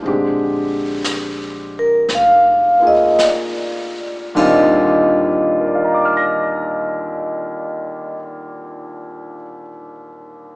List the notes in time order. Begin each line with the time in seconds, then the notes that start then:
0.02 A#1 D3 G#3 C4, brush sweep
0.07 G4
1.04 snare, hi-hat pedal
1.79 A#4
2.09 F1, brush sweep, snare
2.15 F5
2.80 A#3 F4 G#4
2.87 D#5
3.19 snare, hi-hat pedal
3.24 D5
4.35 D#2 A#2 D3 G3 C4 F4, kick, crash
4.40 D#5
5.60 A#4
5.67 D5
5.75 F5
5.84 A#5
5.94 D6
6.05 F6
6.17 A#6